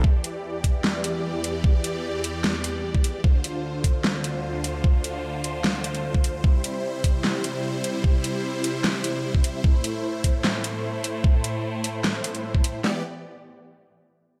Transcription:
0.04 E2 E3 G4 D5, kick
0.24 closed hi-hat
0.64 kick, closed hi-hat
0.84 snare
1.04 closed hi-hat
1.44 closed hi-hat
1.64 kick
1.84 closed hi-hat
2.24 closed hi-hat
2.44 snare
2.64 closed hi-hat
2.95 kick
3.04 closed hi-hat
3.24 D2 D3 F4 C5, kick
3.44 closed hi-hat
3.84 kick, closed hi-hat
4.04 snare
4.24 closed hi-hat
4.64 closed hi-hat
4.84 kick
5.04 closed hi-hat
5.44 closed hi-hat
5.64 snare
5.84 closed hi-hat
5.95 closed hi-hat
6.14 kick
6.24 closed hi-hat
6.44 C3 G3 E4, kick
6.64 closed hi-hat
7.04 kick, closed hi-hat
7.24 snare, clap
7.44 closed hi-hat
7.84 closed hi-hat
8.04 kick
8.24 closed hi-hat
8.64 closed hi-hat
8.84 snare, clap
9.04 closed hi-hat
9.35 kick
9.44 closed hi-hat
9.64 A3, kick
9.84 closed hi-hat
10.24 kick, closed hi-hat
10.44 snare, clap
10.64 closed hi-hat
11.04 closed hi-hat
11.24 kick
11.44 closed hi-hat
11.84 closed hi-hat
12.04 snare, clap
12.24 closed hi-hat
12.35 closed hi-hat
12.55 kick
12.64 closed hi-hat
12.84 E3 B3 G4 D5, snare

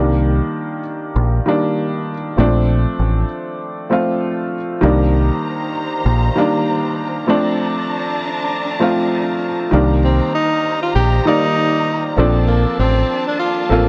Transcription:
Already playing: C2 D#3 G3 A#3 D4
1.16 A#1
1.46 D#3 G3 A#3 D4
2.37 A#1 F3 A3 C4 D4
2.99 A1
3.90 F3 A3 C4 F4
4.81 C2 D#3 G3 A#3 D4 C5 A#5
6.06 A#1
6.35 D#3 G3 A#3 D4
7.27 F3 A3 C4 D4 A5 A#5
8.79 F3 A3 C4 F4
9.71 C2 D#3 G3 A#3 D4 C5 A#5
10.04 C4
10.34 D#4
10.82 F4
10.95 A#1 G4
11.25 D#3 G3 A#3 D#4 D5
12.17 A#1 F3 A#3 C4 D4 A4 A5
12.47 A#3
12.79 A1 C4
13.27 D4
13.39 F4
13.69 A1 F3 A#3 C4 F4 A4

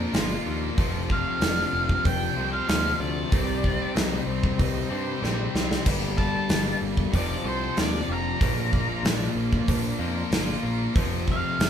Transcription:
Already playing: A#2 F3 A#3 D4 F4 A#4 D5
0.12 G1 A#2 F3 A#3 F4, snare, open hi-hat, cowbell
0.46 D#2 A#3
0.76 F1 F2 C3 F3 D4 F4 A4 C5, kick, open hi-hat, cowbell
1.10 A3 F5, kick
1.40 F1 D4, snare, open hi-hat, cowbell
1.73 F1 A3
1.89 kick
2.05 F1 D4 G5, kick, open hi-hat, cowbell
2.36 C2 F2 C3 F3 C5
2.53 F5
2.67 D#2 F2 C3 F3 A4, snare, open hi-hat, cowbell
2.99 D2 A3 D5
3.30 C2 C3 G3 C4 D#4 G4 C5, kick, open hi-hat, cowbell
3.64 C4, kick
3.95 C2 D#4, snare, open hi-hat, cowbell
4.27 C2 C4
4.43 kick
4.59 C2 D#4, kick, open hi-hat, cowbell
4.89 G2 C3 G3 C4 C5
5.21 A#1 C3 G3 C4 G4, snare, cowbell
5.55 C2 C4, snare
5.71 snare
5.85 G1 G2 D3 G3 A#3 D4 G4 A4, kick, open hi-hat, crash, cowbell
6.18 G3 A5, kick
6.49 G1 A#3, snare, open hi-hat, cowbell
6.81 G1 G3
6.97 kick
7.11 F1 F2 C3 F3 A3 C4 F4, kick, open hi-hat, cowbell
7.15 F3 D4 D5
7.44 C2 A4 C5
7.77 D#2 D4 D5, snare, open hi-hat, cowbell
8.08 F1 F3
8.13 A#5
8.39 A#1 A#2 F3 A#3 D4 F4 A#4, kick, open hi-hat, cowbell
8.73 A#3, kick
9.03 A#1 D4, snare, open hi-hat, cowbell
9.35 A#1 A#3
9.53 kick
9.68 A#1 D4, kick, open hi-hat, cowbell
9.99 F2 A#2 F3 A#3 A#4
10.31 G1 A#2 F3 A#3 F4, snare, open hi-hat, cowbell
10.63 A#1 A#3
10.93 F1 F2 C3 F3 C4 D4 F4 A4, kick, open hi-hat, cowbell
11.28 A3 F5, kick
11.59 F1 D4, snare, open hi-hat, cowbell

